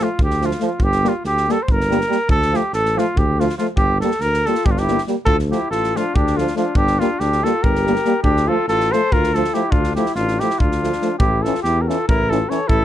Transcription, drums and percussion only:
0.19 kick
0.31 snare
0.42 snare
0.51 snare
0.60 snare
0.80 kick
0.92 snare
1.05 snare
1.25 snare
1.37 snare
1.49 snare
1.68 kick
1.81 snare
1.91 snare
2.01 snare
2.12 snare
2.29 kick
2.42 snare
2.54 snare
2.73 snare
2.86 snare
2.98 snare
3.17 kick
3.40 snare
3.50 snare
3.59 snare
3.77 kick
4.01 snare
4.11 snare
4.21 snare
4.34 snare
4.46 snare
4.55 snare
4.66 kick
4.77 snare
4.88 snare
4.98 snare
5.08 snare
5.27 kick
5.39 snare
5.52 snare
5.72 snare
5.84 snare
5.96 snare
6.16 kick
6.27 snare
6.38 snare
6.47 snare
6.57 snare
6.75 kick
6.87 snare
7.01 snare
7.20 snare
7.32 snare
7.45 snare
7.64 kick
7.76 snare
7.87 snare
7.96 snare
8.05 snare
8.24 kick
8.37 snare
8.68 snare
8.81 snare
8.93 snare
9.12 kick
9.24 snare
9.35 snare
9.45 snare
9.54 snare
9.72 kick
9.84 snare
9.96 snare
10.06 snare
10.16 snare
10.28 snare
10.40 snare
10.50 snare
10.60 kick
10.72 snare
10.84 snare
10.93 snare
11.02 snare
11.20 kick
11.45 snare
11.55 snare
11.65 snare
11.90 snare
12.09 kick
12.32 snare
12.51 snare
12.69 kick

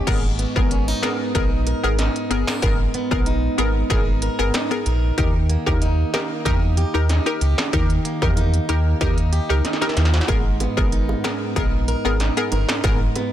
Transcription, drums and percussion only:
0.07 kick, closed hi-hat, crash
0.39 closed hi-hat
0.56 kick
0.71 closed hi-hat
1.03 finger snap, snare, closed hi-hat
1.35 kick, closed hi-hat
1.67 closed hi-hat
1.99 snare, closed hi-hat
2.16 closed hi-hat
2.31 closed hi-hat
2.47 finger snap, snare
2.62 kick, closed hi-hat
2.94 closed hi-hat
3.11 kick
3.26 closed hi-hat
3.58 closed hi-hat
3.90 kick, closed hi-hat
4.22 closed hi-hat
4.54 finger snap, snare, closed hi-hat
4.71 closed hi-hat
4.86 closed hi-hat
5.18 kick, closed hi-hat
5.50 closed hi-hat
5.67 kick
5.82 closed hi-hat
6.14 finger snap, snare, closed hi-hat
6.46 kick, closed hi-hat
6.77 closed hi-hat
7.09 snare, closed hi-hat
7.26 closed hi-hat
7.41 closed hi-hat
7.58 finger snap, snare
7.73 kick, closed hi-hat
7.90 closed hi-hat
8.05 closed hi-hat
8.22 kick
8.37 closed hi-hat
8.54 closed hi-hat
8.69 closed hi-hat
9.01 kick, closed hi-hat
9.18 closed hi-hat
9.33 closed hi-hat
9.65 snare, closed hi-hat
9.73 snare
9.82 snare, closed hi-hat
9.89 snare
9.97 snare, closed hi-hat
10.05 snare
10.14 snare
10.21 snare
10.29 kick, closed hi-hat, high bongo
10.60 closed hi-hat, high bongo
10.77 kick
10.92 closed hi-hat
11.09 high bongo
11.24 finger snap, snare, closed hi-hat, high bongo, low bongo
11.56 kick, closed hi-hat, high bongo
11.88 closed hi-hat
12.20 snare, closed hi-hat
12.37 closed hi-hat
12.52 closed hi-hat, low bongo
12.69 finger snap, snare
12.84 kick, closed hi-hat, high bongo
13.16 closed hi-hat, high bongo

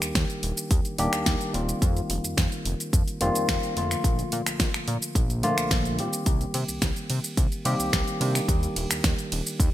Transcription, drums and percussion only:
0.02 finger snap, closed hi-hat, shaker
0.15 kick, snare, closed hi-hat, shaker
0.30 closed hi-hat, shaker
0.43 open hi-hat
0.57 closed hi-hat, shaker
0.71 kick, closed hi-hat, shaker
0.85 closed hi-hat, shaker
0.98 open hi-hat
1.13 finger snap, closed hi-hat, shaker
1.26 kick, snare, closed hi-hat, shaker
1.41 closed hi-hat, shaker
1.54 open hi-hat
1.69 closed hi-hat, shaker
1.82 kick, closed hi-hat, shaker
1.97 closed hi-hat, shaker
2.10 open hi-hat
2.24 closed hi-hat, shaker
2.38 kick, snare, closed hi-hat, shaker
2.52 closed hi-hat, shaker
2.65 open hi-hat
2.80 closed hi-hat, shaker
2.93 kick, closed hi-hat, shaker
3.08 closed hi-hat, shaker
3.21 open hi-hat
3.35 closed hi-hat, shaker
3.49 finger snap, kick, snare, closed hi-hat, shaker
3.63 closed hi-hat, shaker
3.77 open hi-hat
3.91 finger snap, closed hi-hat, shaker
4.04 kick, closed hi-hat, shaker
4.19 closed hi-hat, shaker
4.32 open hi-hat
4.46 finger snap, closed hi-hat, shaker
4.60 kick, snare, closed hi-hat, shaker
4.74 finger snap, closed hi-hat, shaker
4.88 open hi-hat
5.02 closed hi-hat, shaker
5.15 kick, closed hi-hat, shaker
5.30 closed hi-hat, shaker
5.43 open hi-hat
5.58 finger snap, closed hi-hat, shaker
5.71 kick, snare, closed hi-hat, shaker
5.85 closed hi-hat, shaker
5.99 open hi-hat
6.13 closed hi-hat, shaker
6.26 kick, closed hi-hat, shaker
6.41 closed hi-hat, shaker
6.54 open hi-hat, ride
6.68 closed hi-hat, shaker
6.82 kick, snare, closed hi-hat, shaker
6.96 closed hi-hat, shaker
7.10 open hi-hat, ride
7.24 closed hi-hat, shaker
7.37 kick, closed hi-hat, shaker
7.52 closed hi-hat, shaker
7.65 open hi-hat, ride
7.80 closed hi-hat, shaker
7.93 finger snap, kick, snare, closed hi-hat, shaker
8.08 closed hi-hat, shaker
8.21 open hi-hat, ride
8.35 finger snap, closed hi-hat, shaker
8.48 kick, closed hi-hat, shaker
8.63 closed hi-hat, shaker
8.76 open hi-hat, ride
8.91 finger snap, closed hi-hat, shaker
9.04 kick, snare, closed hi-hat, shaker
9.19 closed hi-hat, shaker
9.32 open hi-hat, ride
9.47 closed hi-hat, shaker
9.60 kick, closed hi-hat, shaker

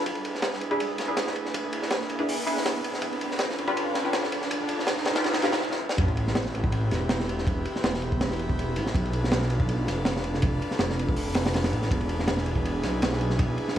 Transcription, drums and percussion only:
0.06 kick, ride
0.15 ride
0.25 ride
0.35 snare
0.42 snare, ride
0.53 snare
0.61 ride
0.71 kick
0.80 ride
0.98 snare, ride
1.17 snare, ride
1.27 snare
1.36 ride
1.45 snare
1.54 kick, ride
1.73 ride
1.82 snare
1.90 snare, ride
2.01 snare
2.09 ride
2.19 kick
2.29 open hi-hat
2.47 ride
2.57 snare
2.66 snare, ride
2.84 ride
2.94 snare
3.02 kick, ride
3.13 ride
3.21 ride
3.31 snare
3.39 snare, ride
3.49 snare
3.58 ride
3.68 kick
3.77 ride
3.94 snare, ride
4.13 snare, ride
4.23 snare
4.32 ride
4.42 snare
4.51 kick, ride
4.69 ride
4.79 snare
4.87 snare, ride
4.97 snare
5.05 snare, ride
5.15 snare, ride
5.24 snare, ride
5.34 snare, ride
5.42 snare, ride
5.52 snare, ride
5.61 snare
5.71 snare
5.89 snare
5.98 kick, ride
6.08 ride
6.17 ride
6.27 snare
6.35 snare, ride
6.45 snare
6.55 ride
6.64 kick
6.72 ride
6.91 snare, ride
7.09 snare, ride
7.20 snare
7.29 ride
7.38 snare
7.47 kick, ride
7.65 ride
7.76 snare
7.84 snare, ride
7.94 snare
8.02 ride
8.12 kick
8.21 snare, ride
8.31 snare
8.39 ride
8.49 kick
8.59 ride
8.76 ride
8.86 snare
8.95 kick, ride
9.05 ride
9.13 ride
9.24 snare
9.31 snare, ride
9.42 snare
9.50 ride
9.60 kick
9.69 ride
9.87 snare, ride
10.05 snare, ride
10.16 snare
10.24 ride
10.34 snare
10.42 kick, ride
10.62 ride
10.71 snare
10.79 snare, ride
10.90 snare
10.99 ride
11.09 kick
11.16 open hi-hat
11.34 snare, ride
11.45 snare, ride
11.54 snare, ride
11.64 snare, ride
11.73 ride
11.82 snare
11.91 kick, ride
12.01 ride
12.09 ride
12.19 snare
12.28 snare, ride
12.37 snare
12.46 ride
12.55 kick
12.65 ride
12.83 snare, ride
13.02 snare, ride
13.12 snare
13.21 ride
13.30 snare
13.39 kick, ride
13.58 ride
13.68 snare

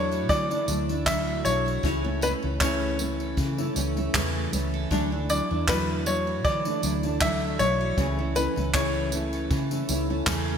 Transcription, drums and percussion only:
0.12 tambourine
0.29 kick, tambourine
0.51 tambourine
0.68 tambourine
0.70 tambourine
0.89 tambourine
1.06 kick, clap, tambourine
1.45 tambourine
1.68 tambourine
1.84 kick, tambourine
2.22 tambourine
2.61 kick, clap, tambourine
2.99 tambourine
3.20 tambourine
3.38 kick, tambourine
3.58 tambourine
3.76 tambourine
3.78 tambourine
3.97 tambourine
4.14 kick, clap, tambourine
4.53 tambourine
4.91 kick, tambourine
5.29 tambourine
5.68 kick, clap, tambourine
6.06 tambourine
6.45 kick, tambourine
6.65 tambourine
6.83 tambourine
7.03 tambourine
7.21 kick, clap, tambourine
7.59 tambourine
7.98 kick, tambourine
8.36 tambourine
8.57 tambourine
8.74 kick, clap, tambourine
9.12 tambourine
9.33 tambourine
9.51 kick, tambourine
9.71 tambourine
9.89 tambourine
10.27 kick, clap, tambourine

